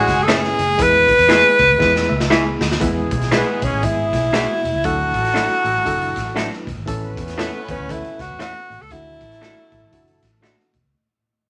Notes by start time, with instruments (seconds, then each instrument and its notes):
Already playing: horn section G#3 G#4, reed electric piano A3 C#4 E4 C#5, tenor saxophone F#4
0.08 fingered electric bass F#1, kick, snare, closed hi-hat
0.23 tenor saxophone A4
0.27 reed electric piano A3 C#4 E4 B4, clean electric guitar E4 A4 C#5 E5, tenor saxophone G#4, snare, closed hi-hat
0.44 snare
0.59 fingered electric bass F#1, closed hi-hat
0.78 fingered electric bass E2, reed electric piano G#3 B3 E4 B4, kick, closed hi-hat
0.82 tenor saxophone B4
1.09 kick, closed hi-hat
1.18 fingered electric bass E2, closed hi-hat
1.28 reed electric piano G#3 B3 E4 G#4, clean electric guitar E4 G#4 B4 E5, snare, closed hi-hat
1.59 fingered electric bass C#2, kick, closed hi-hat
1.70 fingered electric bass D2
1.78 fingered electric bass E2, reed electric piano G#3 B3 E4 B4, kick, snare
1.96 snare
2.09 fingered electric bass C#2, reed electric piano E5
2.20 snare
2.30 reed electric piano G#3 B3 E4 G#4 G#5, clean electric guitar E4 G#4 B4 E5, snare
2.46 reed electric piano B5
2.61 fingered electric bass D2, snare
2.71 snare
2.80 fingered electric bass E2, horn section E3 G#3 B3 G#4, reed electric piano G#3 B3 E4 B4, kick, closed hi-hat
3.11 fingered electric bass B1, kick, closed hi-hat
3.21 snare, closed hi-hat
3.31 reed electric piano G#3 B3 E4 B4, tenor saxophone B3, clean electric guitar E4 G#4 B4 E5, snare, closed hi-hat
3.62 fingered electric bass B1, tenor saxophone C#4, kick, closed hi-hat
3.73 fingered electric bass A1
3.83 fingered electric bass G#1, reed electric piano G#3 B3 E4 B4, tenor saxophone E4, kick, closed hi-hat
4.13 fingered electric bass B1, kick, snare, closed hi-hat
4.33 reed electric piano G#3 B3 E4 F#4, clean electric guitar E4 G#4 B4 E5, snare, closed hi-hat
4.64 fingered electric bass E1, closed hi-hat
4.73 fingered electric bass C#2
4.84 fingered electric bass D2, reed electric piano F#3 D4 E4 A4, horn section F#3 A3 E4 A4, tenor saxophone F#4, kick, closed hi-hat
5.14 fingered electric bass A1, kick, closed hi-hat
5.25 snare, closed hi-hat
5.34 reed electric piano F#3 D4 E4 A4, clean electric guitar D4 F#4 A4 E5, snare, closed hi-hat
5.64 fingered electric bass A1, closed hi-hat
5.75 fingered electric bass G#1
5.85 fingered electric bass F#1, reed electric piano F#3 D4 E4 A4, kick, closed hi-hat
6.01 closed hi-hat
6.16 fingered electric bass A1, kick, snare, closed hi-hat
6.34 reed electric piano F#3 D4 E4 B4, clean electric guitar D4 F#4 A4 E5, snare, closed hi-hat
6.53 snare
6.67 fingered electric bass E1, kick, closed hi-hat
6.78 fingered electric bass G#1
6.86 fingered electric bass A1, reed electric piano E3 A3 C#4 A4, horn section E3 B3 C#4 B4, kick, closed hi-hat
7.17 fingered electric bass E2, kick, closed hi-hat
7.28 snare, closed hi-hat
7.37 reed electric piano E3 A3 C#4 A4, tenor saxophone B3, clean electric guitar E4 A4 C#5 E5, snare, closed hi-hat
7.68 fingered electric bass E2, tenor saxophone C#4, kick, closed hi-hat
7.80 fingered electric bass D2
7.88 reed electric piano E3 A3 C#4 A4, tenor saxophone E4, kick, closed hi-hat
8.04 closed hi-hat
8.19 fingered electric bass C#2, tenor saxophone F#4, kick, snare, closed hi-hat
8.30 fingered electric bass E2
8.39 reed electric piano E3 A3 C#4 A4, clean electric guitar E4 A4 C#5 E5, tenor saxophone F#4, snare, closed hi-hat
8.70 fingered electric bass A1, open hi-hat
8.81 fingered electric bass C#2, tenor saxophone A4
8.90 fingered electric bass D2, reed electric piano E3 A3 D4 F#4, horn section F#3 A3 E4 A4, tenor saxophone E4, kick, closed hi-hat
9.21 fingered electric bass A1, kick, closed hi-hat
9.31 snare, closed hi-hat
9.41 reed electric piano E3 A3 D4 F#4, clean electric guitar D4 F#4 A4 E5, snare, closed hi-hat
9.72 fingered electric bass A1, kick, closed hi-hat
9.82 fingered electric bass G#1
9.91 reed electric piano E3 A3 D4 F#4, kick, closed hi-hat
10.08 closed hi-hat
10.23 fingered electric bass A1, kick, snare, closed hi-hat
10.41 reed electric piano E3 A3 D4 F#4, clean electric guitar D4 F#4 A4 E5, snare, closed hi-hat
10.60 snare
10.73 fingered electric bass E1, kick, closed hi-hat
10.84 fingered electric bass C#2